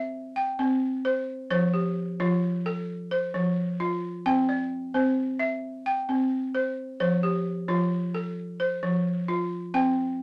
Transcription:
Already playing: C5 E5
0.36 G5
0.59 C4
1.05 C5
1.50 F3 C5
1.74 G4
2.20 F3 F4
2.66 A4
3.11 C5
3.34 F3
3.80 F4
4.26 C4 G5
4.49 D5
4.94 C4 C5
5.39 E5
5.86 G5
6.09 C4
6.55 C5
7.00 F3 C5
7.23 G4
7.68 F3 F4
8.14 A4
8.60 C5
8.83 F3
9.28 F4
9.74 C4 G5

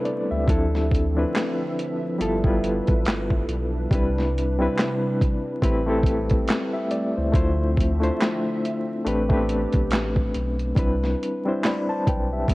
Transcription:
Already playing: C3 G3 A3 B3 C4 D4 E4 G4 A4 B4 C5 E5
0.05 D5, closed hi-hat
0.31 C#2 G4 E5
0.47 D2 D3 F3 C4 D4 E4 A4 E5, kick, closed hi-hat
0.75 snare
0.91 kick, closed hi-hat
1.15 F3 C4 D4 E4 B4
1.35 finger snap, snare, clap, closed hi-hat
1.79 closed hi-hat
2.18 G1 G3 B3 D4 E4 F4 A4 B4, closed hi-hat
2.44 G3 B3 E4 F4 B4, kick
2.64 closed hi-hat
2.87 A1, kick, closed hi-hat
3.05 G1, finger snap, snare, clap, closed hi-hat
3.30 kick
3.49 B1, closed hi-hat
3.91 C2 C3 G3 C4 D4 E4 B4, kick, closed hi-hat
4.18 snare
4.38 closed hi-hat
4.58 G3 C4 D4 E4 B4
4.78 finger snap, snare, clap, closed hi-hat
5.21 kick, closed hi-hat
5.62 A1 A3 C4 E4 G4 B4, kick, closed hi-hat
5.86 A3 C4 E4 G4 A4
6.03 kick, closed hi-hat
6.30 kick, closed hi-hat
6.48 finger snap, snare, clap, closed hi-hat
6.73 G4 E5
6.91 D5, closed hi-hat
7.17 C#2 E4 C5
7.32 D2 D3 F3 A3 C4 D4 E4 F4 C5 E5, kick, closed hi-hat
7.77 kick, closed hi-hat
8.00 A3 D4 E4 F4 C5, closed hi-hat
8.21 finger snap, snare, clap, closed hi-hat
8.65 closed hi-hat
9.05 A1 A3 C4 D4 G4 B4, closed hi-hat
9.29 A3 B3 D4 G4 B4, kick
9.37 C4
9.49 closed hi-hat
9.73 B1, kick, closed hi-hat
9.91 A1, finger snap, snare, clap, closed hi-hat
10.16 kick
10.34 B1, closed hi-hat
10.59 closed hi-hat
10.75 C2 G3 C4 D4 E4 B4, kick, closed hi-hat
11.04 snare
11.23 closed hi-hat
11.45 G3 C4 D4 E4 C5
11.64 D5 B5, finger snap, snare, clap, closed hi-hat
11.89 C5 A5
12.07 B1 B4 G5, kick, closed hi-hat
12.33 G4 E5
12.48 A1 G3 B3 C4, kick, closed hi-hat

